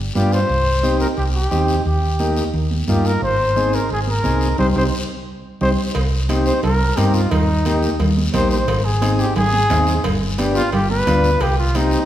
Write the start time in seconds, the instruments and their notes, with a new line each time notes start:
0.15 fingered electric bass G2, transistor combo organ B3 D4 F4, trumpet G4, high conga, short guiro
0.32 trumpet C5, short guiro
0.49 fingered electric bass C2, long guiro
0.83 transistor combo organ C4 D#4 G4, high conga, short guiro
1.00 trumpet A#4, short guiro
1.16 fingered electric bass C2, trumpet G4, long guiro
1.33 trumpet G4
1.51 fingered electric bass D#2, transistor combo organ C4 D#4 G4, high conga, short guiro
1.68 short guiro
1.85 fingered electric bass D#2, trumpet G4, long guiro
2.19 transistor combo organ A#3 D#4 G4, high conga, short guiro
2.36 short guiro
2.54 fingered electric bass D#2, long guiro
2.71 high conga
2.88 fingered electric bass G2, transistor combo organ A#3 D#4 F4, trumpet G4, high conga, short guiro
3.05 trumpet A#4, short guiro
3.22 fingered electric bass G#1, trumpet C5, long guiro
3.56 transistor combo organ C4 D#4 G#4, high conga, short guiro
3.73 trumpet A#4, short guiro
3.90 fingered electric bass G#1, trumpet G#4, long guiro
4.07 trumpet A#4, high conga
4.24 fingered electric bass C2, transistor combo organ C4 D#4 G#4, high conga, short guiro
4.41 short guiro
4.58 fingered electric bass C2, transistor combo organ C4 D#4 G4, trumpet C5, low conga, long guiro
4.75 fingered electric bass C2, transistor combo organ C4 D#4 G4, trumpet C5, low conga, long guiro
5.61 fingered electric bass C2, transistor combo organ C4 D#4 G4, trumpet C5, low conga, long guiro
5.95 fingered electric bass C2, cowbell, long guiro
6.29 transistor combo organ C4 D#4 G4, cowbell, high conga, short guiro
6.46 trumpet C5, short guiro
6.63 fingered electric bass C2, trumpet A#4, cowbell, low conga, long guiro
6.97 fingered electric bass G2, transistor combo organ C4 D#4 A#4, trumpet G4, cowbell, high conga, short guiro
7.14 trumpet F4, short guiro
7.31 fingered electric bass D#2, trumpet D#4, cowbell, low conga, long guiro
7.65 transistor combo organ A#3 D#4 G4, cowbell, high conga, short guiro
7.82 short guiro
8.00 fingered electric bass D#2, cowbell, low conga, long guiro
8.17 high conga
8.34 fingered electric bass A#1, transistor combo organ A#3 D#4 G4, trumpet C5, cowbell, high conga, low conga, short guiro
8.51 trumpet C5, short guiro
8.68 fingered electric bass G#1, cowbell, long guiro
8.85 trumpet G#4
9.01 transistor combo organ C4 D#4 G#4, cowbell, high conga, short guiro
9.19 trumpet G4, short guiro
9.36 fingered electric bass G#1, trumpet G#4, cowbell, low conga, long guiro
9.53 high conga
9.70 fingered electric bass D#2, transistor combo organ C4 D#4 G#4, cowbell, high conga, low timbale, short guiro
9.87 short guiro
10.04 fingered electric bass G1, cowbell, low conga, long guiro
10.38 transistor combo organ B3 D4 G4, cowbell, high conga, short guiro
10.55 trumpet F4, short guiro
10.72 fingered electric bass G1, trumpet G4, cowbell, low conga, long guiro
10.90 trumpet B4, high conga
11.06 fingered electric bass D2, transistor combo organ B3 D4 F4, cowbell, high conga, low conga, short guiro
11.24 short guiro
11.41 fingered electric bass C2, trumpet G4, cowbell, long guiro
11.58 trumpet F4
11.75 transistor combo organ C4 D#4 G4, trumpet D#4, cowbell, high conga, short guiro
11.91 short guiro